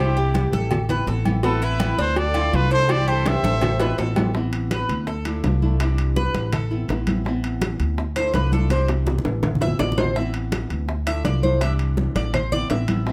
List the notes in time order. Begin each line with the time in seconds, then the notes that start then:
Already playing: C2 E4 G4 C5
0.00 C3 E3 G3 D4 E4
0.17 G4, high conga
0.34 cowbell, high conga, low agogo
0.52 A1 A4, high conga
0.71 muted nylon-string guitar stroke, cowbell, high conga, low conga, low agogo
0.89 B3 C4 E4 B4, cowbell, high conga, low conga, low agogo
1.07 A1 E3 B3 C4 E4 A4, cowbell, high conga
1.25 B3 C4 E4, high conga, low agogo
1.43 E3 B3 C4 E4 A4, cowbell
1.48 E4
1.62 E4 B4, high conga, low agogo
1.80 cowbell, high conga, low agogo
1.98 D2 D4 A4 C5, cowbell, high conga
2.16 A4 D5, muted nylon-string guitar stroke, cowbell, high conga, low agogo
2.34 F3 A3 D4 E4 F4, high conga, low agogo
2.53 C2 F3 A3 D4 E4 F4 B4, cowbell, high conga
2.71 F3 A3 D4 E4 A4 C5, low agogo
2.88 C3 E3 G3 D4 E4 G4 D5, cowbell, high conga, low agogo
3.08 G4 A4 C5, high conga
3.26 C5 E5, cowbell, high conga, high timbale, low agogo
3.43 A1 A4, high conga, high timbale
3.61 muted nylon-string guitar stroke, cowbell, high conga, low conga, high timbale, low agogo
3.80 B3 C4 E4 B4, cowbell, high conga, low timbale, low agogo
3.98 A1 E3 B3 C4 E4 A4, cowbell, high conga, low timbale
4.16 B3 C4 E4, high conga, low timbale, low agogo
4.34 E3 B3 C4 E4, high bongo, high conga
4.53 high conga, high timbale
4.71 B4, high bongo, high conga, high timbale
4.89 D2, high bongo, high conga, high timbale
5.07 A4, muted nylon-string guitar stroke, high bongo, high conga
5.25 F3 A3 D4 E4, high bongo, high conga, high timbale
5.44 C2 F3 A3 D4 E4, high bongo, low bongo, high conga, high timbale, low timbale
5.62 F3 A3 D4 E4, high bongo, high conga
5.80 C3 E3 G3 D4 E4, high bongo, high timbale
5.98 high conga, high timbale
6.16 B4, high bongo, high conga
6.34 A1, high bongo, high conga, high timbale
6.52 A4, muted nylon-string guitar stroke, high bongo, high conga, low conga, high timbale
6.71 B3 C4 E4, high bongo, high conga
6.88 A1 E3 B3 C4 E4, high bongo, low bongo, high conga, high timbale
7.07 B3 C4 E4, high bongo, high conga, high timbale
7.25 E3 B3 C4 E4, high bongo, high conga
7.43 high conga, high timbale
7.61 high bongo, high conga, high timbale
7.79 D2, high bongo, high conga, high timbale
7.98 muted nylon-string guitar stroke, high bongo, high conga
8.16 F3 A3 D4 E4 C5, high bongo, high conga, high timbale
8.34 C2 F3 A3 D4 E4 B4, high bongo, low bongo, high conga, high timbale
8.52 F3 A3 D4 E4 A4, high bongo, high conga
8.70 C3 E3 G3 D4 E4 C5, high bongo, high conga, high timbale
8.88 high bongo, high timbale
9.07 high bongo, low conga
9.18 low conga
9.25 A1, low bongo, high timbale
9.43 muted nylon-string guitar stroke, low bongo, low conga, high timbale
9.55 low conga
9.61 B3 C4 E4 E5, low bongo, low timbale
9.67 low conga
9.79 A1 E3 B3 C4 E4 D5, low bongo, low conga, low timbale
9.92 low conga
9.97 B3 C4 E4 C5, low bongo, low timbale
10.04 low conga
10.15 E3 B3 C4 E4 E5, high bongo, high conga
10.34 high conga, high timbale
10.52 high bongo, high conga, high timbale
10.70 D2, high bongo, high conga, high timbale
10.88 muted nylon-string guitar stroke, high bongo, high conga
11.06 F3 A3 D4 E4 E5, high bongo, high conga, high timbale
11.25 C2 F3 A3 D4 E4 D5, high bongo, low bongo, high conga, high timbale
11.43 F3 A3 D4 E4 C5, high bongo, high conga
11.61 C3 E3 G3 D4 E4 E5, high bongo, high conga, high timbale
11.79 high conga, high timbale
11.97 high bongo, high conga
12.15 A1 D5, high bongo, high conga, high timbale
12.33 C5, muted nylon-string guitar stroke, high bongo, high conga, low conga, high timbale
12.52 B3 C4 E4 D5, high bongo, high conga, low conga
12.70 A1 E3 B3 C4 E4 E5, high bongo, low bongo, high conga, high timbale
12.88 B3 C4 E4, high bongo, high conga, high timbale
13.06 E3 B3 C4, high bongo, high conga